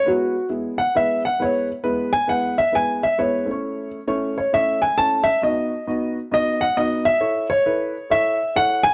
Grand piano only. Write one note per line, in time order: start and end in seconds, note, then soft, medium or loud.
0.08 0.48 F#4 medium
0.78 0.94 F#5 medium
0.97 1.22 E5 loud
1.25 1.41 F#5 medium
1.42 1.67 C#5 medium
2.13 2.30 G#5 loud
2.29 2.58 F#5 medium
2.58 2.75 E5 loud
2.75 3.03 G#5 loud
3.03 3.18 E5 medium
3.19 3.87 C#5 medium
4.38 4.54 C#5 medium
4.54 4.82 E5 loud
4.82 4.99 G#5 loud
4.98 5.26 A5 loud
5.24 5.40 E5 loud
5.43 5.85 D#5 medium
6.34 6.64 D#5 loud
6.61 6.77 F#5 loud
6.77 7.03 D#5 medium
7.05 7.46 E5 loud
7.50 8.13 C#5 medium
8.11 8.57 E5 loud
8.56 8.84 F#5 loud
8.83 8.94 G#5 loud